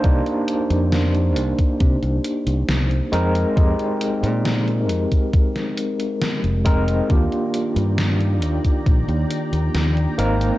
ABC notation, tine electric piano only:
X:1
M:4/4
L:1/8
Q:1/4=68
K:Eb
V:1 name="Tine electric piano"
[B,DEG]6- [B,DEG] [A,CEB] | [A,CEG]6- [A,CEG] [A,CEB] | [B,DFG]6- [B,DFG] [B,CEB] |]